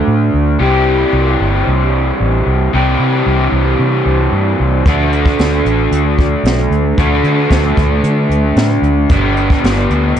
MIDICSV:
0, 0, Header, 1, 4, 480
1, 0, Start_track
1, 0, Key_signature, 2, "major"
1, 0, Tempo, 531444
1, 545, Time_signature, 4, 2, 24, 8
1, 9211, End_track
2, 0, Start_track
2, 0, Title_t, "Overdriven electric guitar"
2, 0, Program_c, 0, 29
2, 0, Note_on_c, 0, 50, 72
2, 0, Note_on_c, 0, 57, 90
2, 0, Note_on_c, 0, 62, 82
2, 0, Note_on_c, 0, 66, 92
2, 526, Note_off_c, 0, 50, 0
2, 529, Note_off_c, 0, 57, 0
2, 532, Note_off_c, 0, 62, 0
2, 536, Note_on_c, 0, 48, 84
2, 538, Note_off_c, 0, 66, 0
2, 544, Note_on_c, 0, 52, 82
2, 547, Note_on_c, 0, 55, 81
2, 553, Note_on_c, 0, 60, 82
2, 559, Note_on_c, 0, 67, 85
2, 2446, Note_off_c, 0, 48, 0
2, 2450, Note_off_c, 0, 52, 0
2, 2452, Note_off_c, 0, 55, 0
2, 2455, Note_off_c, 0, 60, 0
2, 2458, Note_off_c, 0, 67, 0
2, 2467, Note_on_c, 0, 48, 85
2, 2473, Note_on_c, 0, 52, 88
2, 2478, Note_on_c, 0, 55, 84
2, 2485, Note_on_c, 0, 60, 89
2, 2485, Note_on_c, 0, 67, 97
2, 4371, Note_off_c, 0, 48, 0
2, 4374, Note_off_c, 0, 52, 0
2, 4377, Note_off_c, 0, 55, 0
2, 4380, Note_off_c, 0, 60, 0
2, 4380, Note_off_c, 0, 67, 0
2, 4392, Note_on_c, 0, 50, 79
2, 4402, Note_on_c, 0, 57, 79
2, 4408, Note_on_c, 0, 62, 91
2, 4412, Note_on_c, 0, 66, 89
2, 6293, Note_off_c, 0, 50, 0
2, 6298, Note_off_c, 0, 57, 0
2, 6304, Note_on_c, 0, 50, 85
2, 6312, Note_off_c, 0, 62, 0
2, 6312, Note_on_c, 0, 57, 80
2, 6316, Note_on_c, 0, 62, 87
2, 6324, Note_off_c, 0, 66, 0
2, 6327, Note_on_c, 0, 66, 79
2, 8210, Note_off_c, 0, 50, 0
2, 8214, Note_off_c, 0, 57, 0
2, 8224, Note_on_c, 0, 43, 86
2, 8230, Note_on_c, 0, 50, 77
2, 8235, Note_on_c, 0, 55, 99
2, 8236, Note_off_c, 0, 62, 0
2, 8237, Note_off_c, 0, 66, 0
2, 8237, Note_on_c, 0, 59, 88
2, 8240, Note_on_c, 0, 62, 92
2, 8240, Note_on_c, 0, 67, 82
2, 9211, Note_off_c, 0, 43, 0
2, 9211, Note_off_c, 0, 50, 0
2, 9211, Note_off_c, 0, 55, 0
2, 9211, Note_off_c, 0, 59, 0
2, 9211, Note_off_c, 0, 62, 0
2, 9211, Note_off_c, 0, 67, 0
2, 9211, End_track
3, 0, Start_track
3, 0, Title_t, "Fingered electric bass"
3, 0, Program_c, 1, 33
3, 67, Note_on_c, 1, 45, 82
3, 263, Note_off_c, 1, 45, 0
3, 307, Note_on_c, 1, 38, 81
3, 503, Note_off_c, 1, 38, 0
3, 538, Note_on_c, 1, 36, 92
3, 935, Note_off_c, 1, 36, 0
3, 1020, Note_on_c, 1, 36, 83
3, 1219, Note_off_c, 1, 36, 0
3, 1264, Note_on_c, 1, 31, 82
3, 1462, Note_off_c, 1, 31, 0
3, 1511, Note_on_c, 1, 36, 80
3, 1902, Note_off_c, 1, 36, 0
3, 1989, Note_on_c, 1, 33, 83
3, 2185, Note_off_c, 1, 33, 0
3, 2226, Note_on_c, 1, 36, 74
3, 2423, Note_off_c, 1, 36, 0
3, 2472, Note_on_c, 1, 36, 84
3, 2666, Note_off_c, 1, 36, 0
3, 2703, Note_on_c, 1, 48, 81
3, 2901, Note_off_c, 1, 48, 0
3, 2948, Note_on_c, 1, 36, 86
3, 3143, Note_off_c, 1, 36, 0
3, 3180, Note_on_c, 1, 36, 75
3, 3379, Note_off_c, 1, 36, 0
3, 3427, Note_on_c, 1, 48, 81
3, 3623, Note_off_c, 1, 48, 0
3, 3661, Note_on_c, 1, 36, 84
3, 3860, Note_off_c, 1, 36, 0
3, 3900, Note_on_c, 1, 43, 82
3, 4099, Note_off_c, 1, 43, 0
3, 4153, Note_on_c, 1, 36, 79
3, 4346, Note_off_c, 1, 36, 0
3, 4388, Note_on_c, 1, 38, 93
3, 4781, Note_off_c, 1, 38, 0
3, 4871, Note_on_c, 1, 38, 81
3, 5065, Note_off_c, 1, 38, 0
3, 5102, Note_on_c, 1, 33, 81
3, 5300, Note_off_c, 1, 33, 0
3, 5340, Note_on_c, 1, 38, 83
3, 5735, Note_off_c, 1, 38, 0
3, 5811, Note_on_c, 1, 35, 88
3, 6013, Note_off_c, 1, 35, 0
3, 6053, Note_on_c, 1, 38, 80
3, 6254, Note_off_c, 1, 38, 0
3, 6300, Note_on_c, 1, 38, 83
3, 6499, Note_off_c, 1, 38, 0
3, 6535, Note_on_c, 1, 50, 87
3, 6736, Note_off_c, 1, 50, 0
3, 6775, Note_on_c, 1, 38, 77
3, 6975, Note_off_c, 1, 38, 0
3, 7018, Note_on_c, 1, 38, 82
3, 7217, Note_off_c, 1, 38, 0
3, 7255, Note_on_c, 1, 50, 91
3, 7455, Note_off_c, 1, 50, 0
3, 7490, Note_on_c, 1, 38, 84
3, 7693, Note_off_c, 1, 38, 0
3, 7734, Note_on_c, 1, 45, 81
3, 7935, Note_off_c, 1, 45, 0
3, 7968, Note_on_c, 1, 38, 86
3, 8171, Note_off_c, 1, 38, 0
3, 8215, Note_on_c, 1, 31, 84
3, 8613, Note_off_c, 1, 31, 0
3, 8705, Note_on_c, 1, 31, 91
3, 8901, Note_off_c, 1, 31, 0
3, 8944, Note_on_c, 1, 38, 81
3, 9141, Note_off_c, 1, 38, 0
3, 9181, Note_on_c, 1, 31, 83
3, 9211, Note_off_c, 1, 31, 0
3, 9211, End_track
4, 0, Start_track
4, 0, Title_t, "Drums"
4, 4388, Note_on_c, 9, 36, 98
4, 4388, Note_on_c, 9, 42, 77
4, 4478, Note_off_c, 9, 36, 0
4, 4479, Note_off_c, 9, 42, 0
4, 4630, Note_on_c, 9, 42, 64
4, 4721, Note_off_c, 9, 42, 0
4, 4747, Note_on_c, 9, 36, 91
4, 4838, Note_off_c, 9, 36, 0
4, 4867, Note_on_c, 9, 42, 86
4, 4878, Note_on_c, 9, 38, 97
4, 4957, Note_off_c, 9, 42, 0
4, 4968, Note_off_c, 9, 38, 0
4, 5111, Note_on_c, 9, 42, 61
4, 5202, Note_off_c, 9, 42, 0
4, 5350, Note_on_c, 9, 42, 86
4, 5440, Note_off_c, 9, 42, 0
4, 5587, Note_on_c, 9, 36, 73
4, 5594, Note_on_c, 9, 42, 57
4, 5678, Note_off_c, 9, 36, 0
4, 5684, Note_off_c, 9, 42, 0
4, 5829, Note_on_c, 9, 42, 80
4, 5840, Note_on_c, 9, 38, 111
4, 5919, Note_off_c, 9, 42, 0
4, 5930, Note_off_c, 9, 38, 0
4, 6072, Note_on_c, 9, 42, 60
4, 6162, Note_off_c, 9, 42, 0
4, 6304, Note_on_c, 9, 36, 98
4, 6306, Note_on_c, 9, 42, 87
4, 6394, Note_off_c, 9, 36, 0
4, 6396, Note_off_c, 9, 42, 0
4, 6542, Note_on_c, 9, 42, 59
4, 6632, Note_off_c, 9, 42, 0
4, 6778, Note_on_c, 9, 42, 78
4, 6781, Note_on_c, 9, 36, 82
4, 6789, Note_on_c, 9, 38, 101
4, 6868, Note_off_c, 9, 42, 0
4, 6871, Note_off_c, 9, 36, 0
4, 6879, Note_off_c, 9, 38, 0
4, 7018, Note_on_c, 9, 42, 67
4, 7021, Note_on_c, 9, 36, 91
4, 7108, Note_off_c, 9, 42, 0
4, 7111, Note_off_c, 9, 36, 0
4, 7261, Note_on_c, 9, 42, 89
4, 7351, Note_off_c, 9, 42, 0
4, 7507, Note_on_c, 9, 42, 59
4, 7597, Note_off_c, 9, 42, 0
4, 7736, Note_on_c, 9, 42, 96
4, 7747, Note_on_c, 9, 38, 111
4, 7826, Note_off_c, 9, 42, 0
4, 7837, Note_off_c, 9, 38, 0
4, 7979, Note_on_c, 9, 42, 66
4, 8070, Note_off_c, 9, 42, 0
4, 8214, Note_on_c, 9, 42, 95
4, 8218, Note_on_c, 9, 36, 110
4, 8304, Note_off_c, 9, 42, 0
4, 8308, Note_off_c, 9, 36, 0
4, 8460, Note_on_c, 9, 42, 62
4, 8550, Note_off_c, 9, 42, 0
4, 8582, Note_on_c, 9, 36, 79
4, 8672, Note_off_c, 9, 36, 0
4, 8709, Note_on_c, 9, 42, 88
4, 8719, Note_on_c, 9, 38, 103
4, 8799, Note_off_c, 9, 42, 0
4, 8810, Note_off_c, 9, 38, 0
4, 8946, Note_on_c, 9, 42, 60
4, 9036, Note_off_c, 9, 42, 0
4, 9179, Note_on_c, 9, 42, 88
4, 9211, Note_off_c, 9, 42, 0
4, 9211, End_track
0, 0, End_of_file